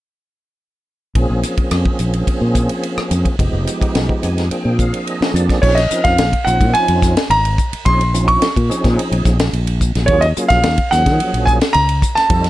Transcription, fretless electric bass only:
1.15 1.29 A#1 medium
1.30 1.43 A#1 medium
1.58 muted fretless electric bass stroke soft
1.71 1.85 F2 medium
2.00 2.26 A#1 medium
2.27 muted fretless electric bass stroke soft
2.41 2.68 A#2 medium
2.97 muted fretless electric bass stroke soft
3.11 3.25 F2 medium
3.25 muted fretless electric bass stroke soft
3.39 3.52 F1 medium
3.53 3.66 F1 medium
3.81 muted fretless electric bass stroke soft
3.95 4.09 B1 medium
4.23 4.49 F2 medium
4.51 muted fretless electric bass stroke soft
4.65 4.91 A#2 medium
5.21 muted fretless electric bass stroke soft
5.34 5.48 F2 medium
5.49 muted fretless electric bass stroke soft
5.63 5.89 A#1 medium
6.05 6.18 F2 medium
6.19 6.32 A#1 medium
6.47 6.62 A#1 medium
6.61 6.73 A#2 medium
6.74 muted fretless electric bass stroke soft
6.88 7.15 F2 medium
7.30 7.56 G#1 medium
7.73 muted fretless electric bass stroke soft
7.86 8.38 A#1 medium
8.42 muted fretless electric bass stroke soft
8.57 8.69 A#2 medium
8.85 8.97 A#2 medium
9.12 9.24 A#1 medium
9.25 9.51 A#1 medium
9.53 9.92 A#1 medium
9.95 10.08 A#1 medium
10.08 10.34 D#2 medium
10.37 muted fretless electric bass stroke soft
10.50 10.63 A#1 medium
10.64 10.77 D#2 medium
10.92 11.08 D#2 medium
11.06 11.19 D#3 medium
11.20 muted fretless electric bass stroke soft
11.34 11.59 A#1 medium
11.75 12.01 C#2 medium
12.16 muted fretless electric bass stroke soft
12.30 12.50 F2 medium

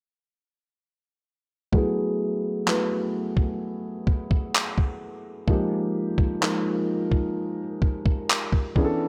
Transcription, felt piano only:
1.72 2.31 F#3 medium
1.72 2.31 A3 medium
1.72 2.31 B3 medium
1.72 2.32 E4 medium
1.72 2.32 G#4 medium
2.66 3.83 F#3 medium
2.66 3.83 A3 medium
2.66 3.84 B3 medium
2.66 3.84 E4 medium
2.66 3.84 B4 medium
5.47 6.06 F3 medium
5.47 6.06 G#3 medium
5.47 6.06 A#3 medium
5.47 6.07 D#4 medium
5.47 6.07 G4 medium
6.41 7.58 F3 medium
6.41 7.58 G#3 medium
6.41 7.58 A#3 medium
6.41 7.59 D#4 medium
6.41 7.59 A#4 medium
8.75 9.08 E3 medium
8.75 9.08 B3 medium
8.75 9.08 C#4 medium
8.75 9.08 D4 medium
8.75 8.83 G#4 medium
8.84 9.08 A4 loud

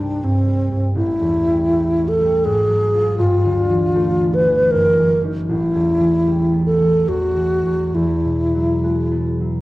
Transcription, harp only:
0.00 0.99 C2 soft
0.00 0.22 G2 soft
0.00 0.46 G3 soft
0.00 1.00 A#3 soft
0.00 1.00 C4 soft
0.23 0.71 G2 soft
0.47 1.44 G3 soft
0.72 1.00 G2 soft
0.96 2.48 A1 medium
1.21 2.48 E2 soft
1.45 2.19 G3 soft
1.70 2.48 A3 soft
1.95 2.48 C#4 soft
2.20 2.48 G3 soft
2.45 3.22 G#1 medium
2.69 3.21 F#3 soft
2.94 3.22 C4 soft
2.94 4.76 F4 soft
3.19 4.76 G1 medium
3.44 4.76 D2 soft
3.69 4.46 E3 soft
3.95 4.75 A3 soft
4.21 4.76 B3 soft
4.47 4.76 E3 soft
4.72 5.52 F#1 medium
4.99 5.53 E3 soft
5.24 7.99 C#4 soft
5.24 5.53 D#4 soft
5.49 7.99 A1 medium
5.75 7.06 E2 soft
6.00 6.79 E3 soft
6.27 7.99 G3 soft
6.53 9.10 B3 soft
6.80 7.35 E3 soft
7.07 7.64 E2 soft
7.36 7.99 E3 soft
7.66 7.94 E2 soft
7.95 9.61 E2 soft
8.25 9.61 B2 soft
8.54 9.39 F#3 soft
8.83 9.61 G#3 soft
9.11 9.61 B3 soft
9.41 9.61 F#3 soft

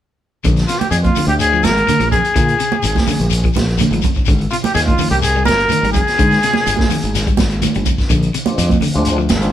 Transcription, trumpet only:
0.67 0.80 F4 medium
0.79 0.90 G4 medium
0.91 0.97 G#4 medium
1.04 1.26 F4 medium
1.28 1.33 G4 medium
1.40 1.66 G#4 medium
1.64 2.11 A#4 medium
2.11 3.51 G#4 medium
4.51 4.56 F4 medium
4.64 4.74 G4 medium
4.74 4.80 G#4 medium
4.87 5.10 F4 medium
5.10 5.16 G4 medium
5.22 5.45 G#4 medium
5.45 5.91 A#4 loud
5.92 7.33 G#4 loud

